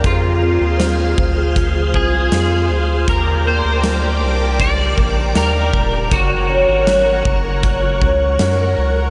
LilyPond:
<<
  \new Staff \with { instrumentName = "String machine" } { \time 4/4 \key f \dorian \tempo 4 = 79 <aes' c'' f'' c'''>1 | <bes' d'' g'' d'''>1 | <bes' des'' ges'' des'''>1 | }
  \new Staff \with { instrumentName = "Clean electric guitar" } { \time 4/4 \key f \dorian f'2~ f'8 aes'4. | bes'8 c''4. d''4 bes'4 | ges'2.~ ges'8 r8 | }
  \new Staff \with { instrumentName = "Twelve-string acoustic guitar" } { \time 4/4 \key f \dorian <f aes'>16 f'16 c'16 f'16 c'16 aes'16 f'16 aes'16 <f aes'>16 f'16 c'16 f'16 c'16 aes'16 f'16 aes'16 | g'16 d'16 bes16 d'16 bes16 g'16 d'16 g'16 <ees g'>16 d'16 bes16 d'16 bes16 g'16 d'16 g'16 | <ges bes'>16 ges'16 des'16 ges'16 des'16 bes'16 ges'16 bes'16 <ges bes'>16 ges'16 des'16 ges'16 des'16 bes'16 ges'16 bes'16 | }
  \new Staff \with { instrumentName = "Analog synth bass" } { \clef bass \time 4/4 \key f \dorian f,8. ees,8. d,4 c,8 f,8 d,8 | ees,8. d,8. c,4 bes,,8 ees,8 ees,,8 | ges,,8. aes,,8. ges,,4 des,8 ges,8 des,8 | }
  \new DrumStaff \with { instrumentName = "Drums" } \drummode { \time 4/4 <hh bd>4 <hh sn>8 bd8 <hh bd>8 bd8 <hh sn>4 | <hh bd>4 <hh sn>4 <hh bd>8 bd8 <hh sn>8 bd8 | <hh bd>4 <hh sn>8 bd8 <hh bd>8 bd8 <hh sn>4 | }
>>